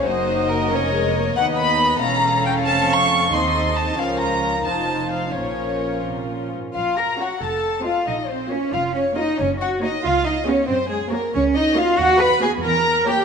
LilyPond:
<<
  \new Staff \with { instrumentName = "Violin section" } { \time 6/8 \key bes \minor \tempo 4. = 91 c''4 bes'8 des''4. | fis''8 b''4 bes''4 g''8 | a''8 des'''4 c'''4 a''8 | f''8 bes''4 a''4 f''8 |
des''4. r4. | r4 f''8 r4 ees''8 | r4 des''8 r4 des''8 | r4 des''8 r4 des''8 |
r4 des''8 r4 des''8 | r4 b'8 r4 cis''8 | }
  \new Staff \with { instrumentName = "Violin section" } { \time 6/8 \key bes \minor << { ees''2. | dis''4. f''4.~ | f''4. ees''4. | bes'4. c''4. |
bes'2~ bes'8 r8 | f''8 bes''8 ges''8 a''4 f''8 | ees''8 c''8 des''8 f''8 des''8 ees''8 | des''8 ges''8 ees''8 f''8 ees''8 des''8 |
c''8 aes'8 bes'8 des''8 ees''8 f''8 | fis''8 b''8 aes''8 bes''4 g''8 | } \\ { ges'4. bes'4. | b'4. a'4.~ | a'4. a'4. | f'4. f'4. |
f'2~ f'8 r8 | r2. | r2. | r2. |
r2. | r2. | } >> }
  \new Staff \with { instrumentName = "Cello section" } { \time 6/8 \key bes \minor ges,4. f,4. | dis,4. e,4. | f,4. ees,4. | des,4. f,4. |
bes,4. c8 bes,8 aes,8 | f'8 bes'8 ges'8 a'4 f'8 | ees'8 c'8 des'8 f'8 des'8 ees'8 | des'8 ges'8 ees'8 f'8 ees'8 des'8 |
c'8 aes8 bes8 des'8 ees'8 f'8 | fis'8 b'8 aes'8 bes'4 g'8 | }
  \new Staff \with { instrumentName = "Viola section" } { \time 6/8 \key bes \minor << { bes2. | dis'4. cis'4. | c'4. c'4. | des'4. ees'4. |
des'2~ des'8 r8 | r4 f'8 r4 f'8 | r4 f'8 r4 f'8 | r4 ges'8 r4 aes'8 |
r4 ges'8 r4 ges'8 | r4 fis'8 r4 g'8 | } \\ { ees'4. des'8 aes8 bes8 | b4. cis'4.~ | cis'4. ees'4. | f4. f4. |
f2~ f8 r8 | r4 des'8 r4 c'8 | r4 bes8 r4 bes8 | r4 bes8 r4 ces'8 |
r4 bes8 r4 bes8 | r4 b8 r4 bes8 | } >> }
  \new Staff \with { instrumentName = "Double bass section" } { \clef bass \time 6/8 \key bes \minor ges,,4. f,,4. | dis,4. e,,4. | f,,4. ees,4. | des,4. f,,4. |
bes,,2~ bes,,8 r8 | bes,,4. f,,4. | bes,,4. f,,4. | ges,,4. des,4. |
ges,4. des,4. | dis,4. e,4. | }
>>